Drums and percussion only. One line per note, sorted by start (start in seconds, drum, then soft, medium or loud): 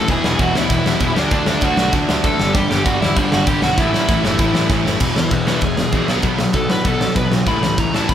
0.08 kick loud
0.08 crash medium
0.24 snare loud
0.39 kick loud
0.39 crash medium
0.55 snare loud
0.70 kick loud
0.70 crash medium
0.86 snare loud
1.00 kick loud
1.00 crash medium
1.16 snare loud
1.31 kick loud
1.31 crash medium
1.46 snare loud
1.61 kick loud
1.61 crash medium
1.77 snare loud
1.93 kick loud
1.93 crash medium
2.09 snare loud
2.24 kick loud
2.24 crash medium
2.40 snare loud
2.55 kick loud
2.55 crash medium
2.71 snare loud
2.86 kick loud
2.86 crash medium
3.02 snare loud
3.17 kick loud
3.17 crash medium
3.32 snare loud
3.47 kick loud
3.47 crash medium
3.62 snare loud
3.78 kick loud
3.78 crash medium
3.94 snare loud
4.09 kick loud
4.09 crash medium
4.25 snare loud
4.39 kick loud
4.39 crash medium
4.55 snare loud
4.69 kick loud
4.69 snare medium
4.86 snare loud
5.00 kick loud
5.00 crash loud
5.00 crash medium
5.16 snare loud
5.31 kick loud
5.31 crash medium
5.47 snare loud
5.61 kick loud
5.61 crash medium
5.77 snare loud
5.92 kick loud
5.92 crash medium
6.08 snare loud
6.22 kick loud
6.22 crash medium
6.39 snare loud
6.53 kick loud
6.53 crash medium
6.70 snare loud
6.85 kick loud
6.85 crash medium
7.01 snare loud
7.16 kick loud
7.16 crash medium
7.32 snare loud
7.46 kick loud
7.46 crash medium
7.63 snare loud
7.78 kick loud
7.78 crash medium
7.94 snare loud
8.09 kick loud
8.09 crash medium